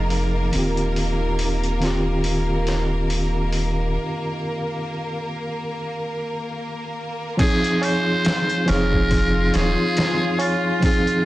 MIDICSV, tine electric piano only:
0, 0, Header, 1, 2, 480
1, 0, Start_track
1, 0, Key_signature, -4, "minor"
1, 0, Tempo, 857143
1, 300, Time_signature, 4, 2, 24, 8
1, 6300, End_track
2, 0, Start_track
2, 0, Title_t, "Tine electric piano"
2, 0, Program_c, 0, 4
2, 0, Control_c, 0, 64, 127
2, 0, Note_on_c, 0, 53, 80
2, 0, Note_on_c, 0, 60, 71
2, 0, Note_on_c, 0, 63, 71
2, 0, Note_on_c, 0, 68, 89
2, 269, Note_off_c, 0, 53, 0
2, 274, Note_off_c, 0, 60, 0
2, 281, Note_off_c, 0, 63, 0
2, 286, Note_off_c, 0, 68, 0
2, 291, Note_on_c, 0, 51, 71
2, 302, Note_on_c, 0, 60, 68
2, 306, Control_c, 0, 64, 0
2, 313, Note_on_c, 0, 65, 61
2, 324, Note_on_c, 0, 67, 74
2, 400, Control_c, 0, 64, 127
2, 991, Note_off_c, 0, 51, 0
2, 996, Note_off_c, 0, 60, 0
2, 1002, Note_off_c, 0, 65, 0
2, 1007, Note_off_c, 0, 67, 0
2, 1008, Note_on_c, 0, 51, 79
2, 1019, Note_on_c, 0, 60, 74
2, 1032, Note_on_c, 0, 65, 76
2, 1044, Note_on_c, 0, 67, 90
2, 2189, Note_off_c, 0, 51, 0
2, 2195, Note_off_c, 0, 60, 0
2, 2201, Note_off_c, 0, 65, 0
2, 2207, Note_off_c, 0, 67, 0
2, 4128, Note_on_c, 0, 53, 81
2, 4140, Note_on_c, 0, 60, 74
2, 4146, Control_c, 0, 64, 0
2, 4153, Note_on_c, 0, 63, 73
2, 4163, Note_on_c, 0, 68, 86
2, 4231, Control_c, 0, 64, 127
2, 4829, Note_off_c, 0, 53, 0
2, 4835, Note_off_c, 0, 60, 0
2, 4842, Note_off_c, 0, 63, 0
2, 4847, Note_off_c, 0, 68, 0
2, 4848, Note_on_c, 0, 53, 87
2, 4861, Note_on_c, 0, 60, 83
2, 4872, Note_on_c, 0, 63, 78
2, 4883, Note_on_c, 0, 68, 100
2, 6029, Note_off_c, 0, 53, 0
2, 6036, Note_off_c, 0, 60, 0
2, 6041, Note_off_c, 0, 63, 0
2, 6046, Note_off_c, 0, 68, 0
2, 6050, Note_on_c, 0, 53, 81
2, 6060, Note_on_c, 0, 60, 76
2, 6071, Note_on_c, 0, 63, 76
2, 6082, Note_on_c, 0, 68, 86
2, 6300, Note_off_c, 0, 53, 0
2, 6300, Note_off_c, 0, 60, 0
2, 6300, Note_off_c, 0, 63, 0
2, 6300, Note_off_c, 0, 68, 0
2, 6300, End_track
0, 0, End_of_file